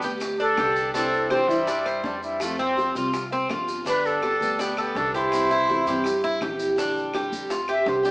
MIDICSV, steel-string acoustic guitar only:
0, 0, Header, 1, 3, 480
1, 0, Start_track
1, 0, Key_signature, 0, "major"
1, 0, Tempo, 364299
1, 1245, Time_signature, 4, 2, 24, 8
1, 10684, End_track
2, 0, Start_track
2, 0, Title_t, "Steel-string acoustic guitar"
2, 0, Program_c, 0, 25
2, 19, Note_on_c, 0, 67, 70
2, 44, Note_on_c, 0, 59, 59
2, 51, Note_on_c, 0, 55, 59
2, 262, Note_off_c, 0, 67, 0
2, 264, Note_off_c, 0, 55, 0
2, 268, Note_off_c, 0, 59, 0
2, 751, Note_on_c, 0, 50, 46
2, 761, Note_on_c, 0, 55, 47
2, 775, Note_on_c, 0, 59, 52
2, 784, Note_on_c, 0, 67, 51
2, 1229, Note_off_c, 0, 50, 0
2, 1234, Note_off_c, 0, 55, 0
2, 1234, Note_on_c, 0, 48, 60
2, 1240, Note_on_c, 0, 52, 66
2, 1241, Note_off_c, 0, 59, 0
2, 1245, Note_off_c, 0, 67, 0
2, 1252, Note_on_c, 0, 55, 64
2, 1256, Note_on_c, 0, 62, 66
2, 1262, Note_on_c, 0, 64, 75
2, 1701, Note_off_c, 0, 52, 0
2, 1711, Note_off_c, 0, 48, 0
2, 1717, Note_off_c, 0, 55, 0
2, 1717, Note_on_c, 0, 52, 43
2, 1722, Note_off_c, 0, 62, 0
2, 1725, Note_off_c, 0, 64, 0
2, 1733, Note_on_c, 0, 55, 48
2, 1739, Note_on_c, 0, 62, 51
2, 1746, Note_on_c, 0, 64, 48
2, 1943, Note_off_c, 0, 64, 0
2, 1952, Note_off_c, 0, 52, 0
2, 1952, Note_off_c, 0, 62, 0
2, 1959, Note_on_c, 0, 64, 62
2, 1960, Note_off_c, 0, 55, 0
2, 1968, Note_on_c, 0, 62, 61
2, 1985, Note_on_c, 0, 55, 60
2, 1991, Note_on_c, 0, 52, 53
2, 2194, Note_off_c, 0, 64, 0
2, 2196, Note_off_c, 0, 52, 0
2, 2198, Note_off_c, 0, 62, 0
2, 2201, Note_off_c, 0, 55, 0
2, 2678, Note_on_c, 0, 52, 43
2, 2691, Note_on_c, 0, 55, 44
2, 2703, Note_on_c, 0, 62, 46
2, 2711, Note_on_c, 0, 64, 51
2, 3154, Note_off_c, 0, 52, 0
2, 3160, Note_off_c, 0, 55, 0
2, 3166, Note_off_c, 0, 62, 0
2, 3171, Note_off_c, 0, 64, 0
2, 3171, Note_on_c, 0, 53, 69
2, 3183, Note_on_c, 0, 55, 64
2, 3192, Note_on_c, 0, 60, 68
2, 3203, Note_on_c, 0, 65, 72
2, 3640, Note_off_c, 0, 53, 0
2, 3647, Note_off_c, 0, 55, 0
2, 3651, Note_off_c, 0, 60, 0
2, 3657, Note_off_c, 0, 65, 0
2, 3661, Note_on_c, 0, 53, 48
2, 3670, Note_on_c, 0, 55, 50
2, 3681, Note_on_c, 0, 60, 49
2, 3688, Note_on_c, 0, 65, 57
2, 3872, Note_off_c, 0, 65, 0
2, 3885, Note_off_c, 0, 53, 0
2, 3888, Note_on_c, 0, 65, 62
2, 3890, Note_off_c, 0, 55, 0
2, 3895, Note_off_c, 0, 60, 0
2, 3910, Note_on_c, 0, 60, 64
2, 3925, Note_on_c, 0, 55, 57
2, 4115, Note_off_c, 0, 55, 0
2, 4119, Note_off_c, 0, 65, 0
2, 4121, Note_off_c, 0, 60, 0
2, 4593, Note_on_c, 0, 53, 44
2, 4606, Note_on_c, 0, 55, 45
2, 4624, Note_on_c, 0, 60, 46
2, 4632, Note_on_c, 0, 65, 50
2, 5062, Note_off_c, 0, 53, 0
2, 5062, Note_off_c, 0, 55, 0
2, 5067, Note_on_c, 0, 50, 62
2, 5078, Note_on_c, 0, 55, 67
2, 5083, Note_off_c, 0, 60, 0
2, 5088, Note_on_c, 0, 59, 66
2, 5091, Note_off_c, 0, 65, 0
2, 5101, Note_on_c, 0, 67, 76
2, 5539, Note_off_c, 0, 50, 0
2, 5546, Note_off_c, 0, 55, 0
2, 5554, Note_on_c, 0, 50, 47
2, 5560, Note_off_c, 0, 59, 0
2, 5561, Note_on_c, 0, 55, 46
2, 5566, Note_off_c, 0, 67, 0
2, 5575, Note_on_c, 0, 59, 46
2, 5582, Note_on_c, 0, 67, 52
2, 5786, Note_off_c, 0, 67, 0
2, 5793, Note_off_c, 0, 50, 0
2, 5796, Note_off_c, 0, 55, 0
2, 5802, Note_on_c, 0, 67, 64
2, 5803, Note_off_c, 0, 59, 0
2, 5823, Note_on_c, 0, 59, 53
2, 5831, Note_on_c, 0, 55, 54
2, 6036, Note_off_c, 0, 67, 0
2, 6037, Note_off_c, 0, 55, 0
2, 6041, Note_off_c, 0, 59, 0
2, 6519, Note_on_c, 0, 50, 50
2, 6532, Note_on_c, 0, 55, 46
2, 6545, Note_on_c, 0, 59, 51
2, 6548, Note_on_c, 0, 67, 50
2, 6995, Note_off_c, 0, 50, 0
2, 7001, Note_off_c, 0, 55, 0
2, 7003, Note_on_c, 0, 48, 63
2, 7008, Note_off_c, 0, 59, 0
2, 7009, Note_off_c, 0, 67, 0
2, 7017, Note_on_c, 0, 52, 67
2, 7022, Note_on_c, 0, 55, 69
2, 7028, Note_on_c, 0, 60, 72
2, 7039, Note_on_c, 0, 64, 66
2, 7465, Note_off_c, 0, 52, 0
2, 7477, Note_off_c, 0, 48, 0
2, 7477, Note_off_c, 0, 55, 0
2, 7480, Note_on_c, 0, 52, 49
2, 7486, Note_off_c, 0, 60, 0
2, 7493, Note_on_c, 0, 55, 50
2, 7495, Note_off_c, 0, 64, 0
2, 7502, Note_on_c, 0, 60, 52
2, 7509, Note_on_c, 0, 64, 53
2, 7703, Note_off_c, 0, 64, 0
2, 7715, Note_off_c, 0, 52, 0
2, 7715, Note_off_c, 0, 60, 0
2, 7719, Note_on_c, 0, 64, 66
2, 7722, Note_off_c, 0, 55, 0
2, 7731, Note_on_c, 0, 60, 61
2, 7742, Note_on_c, 0, 55, 64
2, 7754, Note_on_c, 0, 52, 54
2, 7952, Note_off_c, 0, 52, 0
2, 7954, Note_off_c, 0, 55, 0
2, 7954, Note_off_c, 0, 64, 0
2, 7961, Note_off_c, 0, 60, 0
2, 8439, Note_on_c, 0, 52, 43
2, 8446, Note_on_c, 0, 55, 45
2, 8458, Note_on_c, 0, 60, 42
2, 8463, Note_on_c, 0, 64, 55
2, 8903, Note_off_c, 0, 52, 0
2, 8909, Note_on_c, 0, 50, 63
2, 8911, Note_off_c, 0, 55, 0
2, 8923, Note_off_c, 0, 60, 0
2, 8926, Note_off_c, 0, 64, 0
2, 8926, Note_on_c, 0, 55, 70
2, 8936, Note_on_c, 0, 62, 70
2, 8947, Note_on_c, 0, 67, 73
2, 9382, Note_off_c, 0, 50, 0
2, 9390, Note_off_c, 0, 55, 0
2, 9398, Note_on_c, 0, 50, 62
2, 9402, Note_off_c, 0, 62, 0
2, 9406, Note_on_c, 0, 55, 67
2, 9407, Note_off_c, 0, 67, 0
2, 9419, Note_on_c, 0, 62, 68
2, 9424, Note_on_c, 0, 67, 76
2, 9868, Note_off_c, 0, 50, 0
2, 9876, Note_off_c, 0, 55, 0
2, 9883, Note_off_c, 0, 62, 0
2, 9885, Note_off_c, 0, 67, 0
2, 10353, Note_on_c, 0, 50, 49
2, 10370, Note_on_c, 0, 55, 54
2, 10380, Note_on_c, 0, 62, 49
2, 10391, Note_on_c, 0, 67, 55
2, 10564, Note_off_c, 0, 67, 0
2, 10580, Note_on_c, 0, 67, 77
2, 10583, Note_off_c, 0, 62, 0
2, 10589, Note_off_c, 0, 50, 0
2, 10598, Note_off_c, 0, 55, 0
2, 10599, Note_on_c, 0, 62, 63
2, 10612, Note_on_c, 0, 55, 53
2, 10684, Note_off_c, 0, 55, 0
2, 10684, Note_off_c, 0, 62, 0
2, 10684, Note_off_c, 0, 67, 0
2, 10684, End_track
3, 0, Start_track
3, 0, Title_t, "Muted steel-string acoustic guitar strokes"
3, 271, Note_on_c, 9, 29, 53
3, 403, Note_off_c, 9, 29, 0
3, 2206, Note_on_c, 9, 29, 59
3, 2338, Note_off_c, 9, 29, 0
3, 4125, Note_on_c, 9, 29, 59
3, 4257, Note_off_c, 9, 29, 0
3, 6043, Note_on_c, 9, 29, 60
3, 6175, Note_off_c, 9, 29, 0
3, 7963, Note_on_c, 9, 29, 65
3, 8095, Note_off_c, 9, 29, 0
3, 9884, Note_on_c, 9, 29, 62
3, 10016, Note_off_c, 9, 29, 0
3, 10684, End_track
0, 0, End_of_file